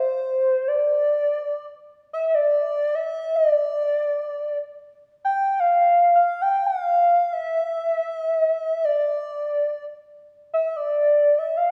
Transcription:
Already playing: C5
0.68 D5
2.13 E5
2.27 E5
2.34 D5
2.95 E5
3.36 D#5
3.51 D5
5.25 G5
5.60 F5
6.15 F5
6.41 G5
6.66 F5
7.32 E5
8.85 D5
10.54 E5
10.76 D5
11.38 E5
11.57 F5

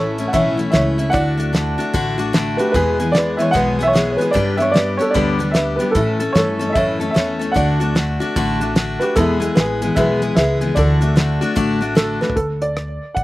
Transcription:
Already playing: A1 E3 A3 C#4 E4 A4 C#5
0.18 A3 C#4 E4, closed hi-hat
0.28 F#5
0.33 B1 A2 E3 A3 C#4 E4 C#5 E5, kick, closed hi-hat
0.57 A3 C#4 E4, closed hi-hat
0.71 C#2 E3 A3 C#4 E4 E5, snare, closed hi-hat
0.75 C#5
0.98 A3 C#4 E4, closed hi-hat
1.10 D3 A3 D4 F#4 D5 F#5
1.14 D2, kick, closed hi-hat
1.37 A3 D4 F#4, closed hi-hat
1.53 D3 A3 D4 F#4, snare, closed hi-hat
1.78 A3 D4 F#4, closed hi-hat
1.94 A1 D3 A3 D4 F#4, kick, closed hi-hat
2.18 A3 D4 F#4, closed hi-hat
2.33 D3 A3 D4 F#4, snare, closed hi-hat
2.57 A3 D4 F#4 G4 B4, closed hi-hat
2.72 E2 B2 E3 G#3 B3 G#4 B4, kick, closed hi-hat
2.99 E3 G#3 B3 G#4, closed hi-hat
3.12 E3 G#3 B3 G#4 D5, snare, closed hi-hat
3.17 B4
3.37 E3 G#3 B3 G#4 E5, closed hi-hat
3.42 C#5
3.51 E2 B2 E3 G#3 B3 G#4 F#5, kick
3.55 B1 B4, closed hi-hat
3.79 E3 G#3 B3 G#4 E5, closed hi-hat
3.88 C#5
3.93 E3 G#3 B3 G#4, snare, closed hi-hat
4.11 C#5
4.17 E3 G#3 B3 G#4 B4
4.21 G#4, closed hi-hat
4.31 G2 D3 G3 B3 D4 G4 D5
4.35 G2 B4, kick, closed hi-hat
4.57 G3 B3 D4 G4 E5, closed hi-hat
4.62 C#5
4.72 G3 B3 D4 D5
4.76 G4 B4, snare, closed hi-hat
4.97 G3 B3 D4 G4 C#5, closed hi-hat
5.02 A4
5.10 G2 D3 G3 D5
5.15 D2 B3 D4 G4 B4, kick, closed hi-hat
5.39 G3 B3 D4 G4, closed hi-hat
5.51 G3 B3 E5, snare, closed hi-hat
5.55 D4 G4 B4
5.76 B3 D4 G4 B4, closed hi-hat
5.80 G3 G4
5.91 A2 E3 A4, closed hi-hat
5.95 A2 A3 C#4 E4 A4, kick
6.20 A3 C#4 A4, closed hi-hat
6.33 G2 E3 A3 C#4 A4 C#5, snare, closed hi-hat
6.38 A4
6.59 A3 C#4 A4, closed hi-hat
6.70 D#5 E5
6.75 F#2 A2 E3 A3 C#4 A4 C#5, kick, closed hi-hat
7.00 A3 C#4 A4, closed hi-hat
7.11 E3 E5
7.15 E2 A3 C#4 A4 C#5, snare, closed hi-hat
7.39 A3 C#4 A4, closed hi-hat
7.52 D3 A3 D4 F#5
7.56 D2 F#4 D5, kick, closed hi-hat
7.80 A3 D4 F#4, closed hi-hat
7.95 D3 A3 D4 F#4, snare, closed hi-hat
8.20 A3 D4 F#4, closed hi-hat
8.36 A1 D3 A3 D4 F#4, kick, closed hi-hat
8.61 A3 D4 F#4, closed hi-hat
8.75 D3 A3 D4 F#4, snare, closed hi-hat
9.00 A3 D4 F#4 G4 B4, closed hi-hat
9.15 E2 B2 E3 G#3 B3 E4 G#4 A4, kick, closed hi-hat
9.40 E3 G#3 B3 G#4, closed hi-hat
9.55 A1 E3 G#3 B3 G#4 B4, snare, closed hi-hat
9.60 G#4
9.82 E3 G#3 B3 G#4, closed hi-hat
9.95 B1 E2 B2 E3 G#3 B3 G#4 B4 E5, kick, closed hi-hat
10.22 E3 G#3 B3 G#4, closed hi-hat
10.35 C#2 E3 G#3 B3 G#4 B4 E5, snare, closed hi-hat
10.61 E3 G#3 B3 G#4, closed hi-hat
10.75 D2 D3 A3 D4 F#4 A4 D5, kick, closed hi-hat
11.01 A3 D4 F#4, closed hi-hat
11.16 D3 A3 D4 F#4, snare, closed hi-hat
11.41 A3 D4 F#4, closed hi-hat
11.56 A1 D3 A3 D4 F#4, kick, closed hi-hat
11.81 A3 D4 F#4, closed hi-hat
11.95 D3 A3 D4 F#4 A4, snare, closed hi-hat
12.21 A3 D4 F#4 B4, snare
12.30 floor tom
12.36 D2 A4, kick, closed hi-hat
12.62 D5, closed hi-hat
12.77 cross-stick, closed hi-hat
13.15 A1 F#5, kick, closed hi-hat

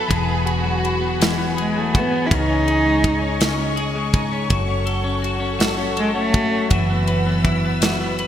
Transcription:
Already playing: F#3 B3 E4 B4 B5
0.08 E1 E3 G#4 F#5 G#5, kick, ride
0.29 B3
0.46 F#4 G#4, ride
0.64 F#3
0.84 F#4, ride
1.01 B3
1.20 E3, snare, ride
1.38 B3
1.57 G#3 G#4, ride
1.74 F#3
1.78 A3
1.94 F#4, kick, ride
1.98 B3
2.11 B3
2.26 E4
2.30 C#2 C#3 D#4 D#5 C#6, kick, ride
2.49 C#4
2.67 G#4, ride
2.86 G#3
3.04 D#4, kick, ride
3.21 C#4
3.41 C#3, snare, ride
3.59 C#4
3.76 G#4, ride
3.95 G#3
4.13 D#4, kick, ride
4.32 C#4
4.49 F#1 F#3 A4 C#5 F#5, kick, ride
4.69 C#4
4.86 A4, ride
5.04 C#4
5.22 F#4, ride
5.40 C#4
5.59 F#3, snare, ride
5.78 C#4
5.97 G#3 A4, ride
6.15 A3 C#4
6.34 F#4, kick, ride
6.51 C#4
6.70 F#1 E3 F#3 B4 E5 E6, kick, ride
6.90 B3
7.07 B4, ride
7.26 B3
7.45 E4, kick, ride
7.64 B3
7.82 F#3, snare, ride
8.00 B3
8.19 B4, ride

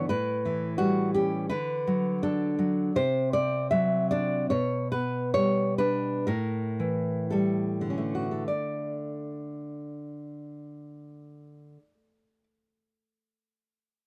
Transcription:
Already playing: D3
0.09 A2 B4
0.45 E3
0.78 G3 F#4
1.14 C#4 G4
1.50 D3 B4
1.87 F#3
2.23 D4 A4
2.59 F#3
2.96 C3 C5
3.33 C4 D5
3.71 F#3 E5
4.11 D4 D5
4.50 B2 C#5
4.92 B3 B4
5.34 G3 C#5
5.78 D4 B4
6.27 A2 A#4
6.80 E3
7.30 G3 A4
7.81 D3
7.90 C#4
7.98 A3
8.15 F#4
8.31 A4
8.48 D5

